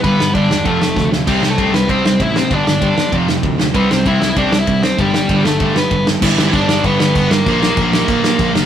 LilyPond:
<<
  \new Staff \with { instrumentName = "Overdriven electric guitar" } { \time 4/4 \key g \mixolydian \tempo 4 = 194 <b b'>4 <d' d''>4 <a a'>4. r8 | <g g'>8. <a a'>8. <b b'>8 <c' c''>8 <c' c''>8 <e' e''>8 <c' c''>8 | <d' d''>2 r2 | <b b'>8 <c' c''>8 <e' e''>4 <d' d''>8. <e' e''>8. <c' c''>8 |
<g g'>4. <a a'>4 <b b'>4 r8 | <e e'>4 <d' d''>4 <b b'>4. <bes bes'>8~ | <bes bes'>2.~ <bes bes'>8 r8 | }
  \new Staff \with { instrumentName = "Distorted electric guitar" } { \clef bass \time 4/4 \key g \mixolydian <g, d g>8 <g, d>8 <g, d g>8 <g, d>8 <f, c f>8 <f, c>8 <f, c>8 <f, c>8 | <c g c'>8 <c g>8 <c g c'>8 <c g>8 <c g c'>8 <c g>8 <c g>8 <c g>8 | <g, d g>8 <g, d>8 <g, d g>8 <g, d>8 <f, c f>8 <f, c>8 <f, c>8 <f, c>8 | <c g c'>8 <c g>8 <c g c'>8 <c g>8 <c g c'>8 <c g>8 <c g>8 <c g>8 |
<g, d g>8 <g, d>8 <g, d g>8 <g, d>8 <g, d g>8 <g, d>8 <g, d>8 <g, d>8 | <g, d g>1 | <bes, f bes>1 | }
  \new Staff \with { instrumentName = "Distorted electric guitar" } { \clef bass \time 4/4 \key g \mixolydian <g, d g>8 <g, d>8 <g, d g>8 <g, d>8 <f, c f>8 <f, c>8 <f, c>8 <f, c>8 | <c g c'>8 <c g>8 <c g c'>8 <c g>8 <c g c'>8 <c g>8 <c g>8 <c g>8 | <g, d g>8 <g, d>8 <g, d g>8 <g, d>8 <f, c f>8 <f, c>8 <f, c>8 <f, c>8 | <c g c'>8 <c g>8 <c g c'>8 <c g>8 <c g c'>8 <c g>8 <c g>8 <c g>8 |
<g, d g>8 <g, d>8 <g, d g>8 <g, d>8 <g, d g>8 <g, d>8 <g, d>8 <g, d>8 | <g, d g b d'>1 | <bes, d f bes d'>1 | }
  \new Staff \with { instrumentName = "Distorted electric guitar" } { \clef bass \time 4/4 \key g \mixolydian <g, d g>4. <g, d g>8 <f, c f>4. <f, c f>8 | <c g c'>4. <c g c'>2~ <c g c'>8 | <g, d g>4. <g, d g>8 <f, c f>4. <f, c f>8 | <c g c'>4. <c g c'>2~ <c g c'>8 |
<g, d g>4. <g, d g>2~ <g, d g>8 | <g, d g>1 | <bes, f bes>1 | }
  \new Staff \with { instrumentName = "Picked electric bass" } { \clef bass \time 4/4 \key g \mixolydian g,,8 g,,8 g,,8 e,,8 f,,4 d,4 | c,8 c,8 c,8 c,8 c,8 c,8 a,,4 | g,,8 g,,8 g,,8 g,,8 f,,4 d,4 | c,8 c,8 c,8 c,8 c,8 c,8 c,4 |
g,,8 g,,8 g,,8 g,,8 g,,4 g,,4 | g,,8 g,,8 g,,8 g,,8 g,,8 g,,8 g,,8 g,,8 | bes,,4 bes,,4 bes,,8 bes,,8 bes,,8 fis,,8 | }
  \new DrumStaff \with { instrumentName = "Drums" } \drummode { \time 4/4 <bd cymr>8 sn8 <bd cymr>8 sn8 <bd cymr>8 sn8 <bd sn>8 sn8 | <cymc bd cymr>8 sn8 <bd cymr>8 sn8 <bd cymr>8 sn8 <bd cymr>8 sn8 | <bd cymr>8 sn8 <bd cymr>8 sn8 <bd cymr>8 sn8 <bd cymr>8 sn8 | <bd cymr>8 sn8 <bd cymr>8 sn8 <bd cymr>8 sn8 <bd cymr>8 sn8 |
<bd cymr>8 sn8 <bd cymr>8 sn8 <bd cymr>8 sn8 <bd cymr>8 sn8 | <cymc bd>8 sn8 <cymc bd>8 sn8 <cymc bd>8 sn8 <cymc bd>8 sn8 | <cymc bd>8 sn8 <cymc bd>8 sn8 <cymc bd>8 sn8 <cymc bd>8 sn8 | }
>>